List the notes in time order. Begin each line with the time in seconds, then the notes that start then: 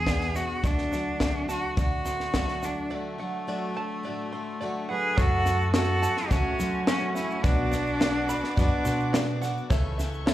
Already playing: E2 B2 E3 B3 G#4 C6
0.06 E3 B3 D4 G#4 D5, kick, snare, shaker
0.21 snare
0.34 B3 D4 F#4 G#4 E5, snare, shaker
0.63 D2 D3 F#3 A3 D4 F#4 D5, kick, snare, shaker
0.78 snare
0.91 F#3 A3 D4 F#4 F#5, snare, shaker
1.19 D2 D3 F#3 A3 D4 F#4 D5, kick, snare, shaker
1.48 A3 D4 F#4 A5, snare, shaker
1.76 D2 A2 F#3 A3 D4 F#4 D5, kick, snare, shaker
2.05 A3 D4 F#4 C6, snare, shaker
2.20 snare, shaker
2.33 D3 F#3 A3 D4 F#4 D5, kick, snare, shaker
2.48 snare
2.62 F#3 A3 D4 F#4 F#5, snare, shaker
2.90 D3 F#3 A3 D4 F#4 D5
2.94 A3
3.18 F#3 A3 D4 F#4 F#5
3.47 D3 F#3 A3 D4 F#4 D5
3.74 A3 D4 F#4 A5
4.03 A2 F#3 A3 D4 F#4 D5
4.33 A3 D4 F#4 C6
4.61 D3 F#3 A3 D4 F#4 D5
4.89 F#3 A3 D4 F#4 G#4 B4 F#5
5.17 F#1 F#2 C#3 F#3 A3 C#4 F#4 A4 C#5 F#5 A5, kick, snare, shaker
5.45 F#3 A3 C#4 F#4 F#5, snare, shaker
5.61 shaker
5.73 F#3 A3 C#4 F#4 A4 C#5 E5, snare, shaker
6.02 F#3 A3 C#4 F#4 A5, snare, shaker
6.17 snare
6.30 C#2 F#2 C#3 F#3 A3 C#4 F#4 A4 C#5, kick, snare, shaker
6.59 F#3 A3 C#4 F#4 C6, snare, shaker
6.86 F#3 A3 C#4 F#4 A4 C#5, snare, shaker
6.90 F#4
7.14 A3 C#4 E4 F#4 F#5, snare, shaker
7.19 F#3
7.31 shaker
7.42 B1 B2 F#3 B3 D4 F#4 B4 D5 D6, kick, snare, shaker
7.46 B3 D4 F#4 D5
7.71 B3 D4 F#4 F#5, snare, shaker
7.87 shaker
8.00 F#3 B3 D4 F#4 B4 D5, snare, shaker
8.29 B3 D4 F#4 B5, snare, shaker
8.44 snare
8.56 F#2 B2 F#3 B3 D4 F#4 B4 D5, kick, snare, shaker
8.84 B2 B3 D4 F#4 C6, snare, shaker
9.00 shaker
9.13 F#3 B3 D4 F#4 D5, snare, shaker
9.41 B3 D4 F#4 F#5, snare, shaker
9.57 shaker
9.70 C#2 C#3 E3 A3 C#4 E4 A4 C#5 E5 C#6, kick, snare, shaker
9.98 A3 C#4 A4 E5, snare, shaker
10.14 shaker
10.26 E3 A3 C#4 E4 A4 C#5 E5, snare, shaker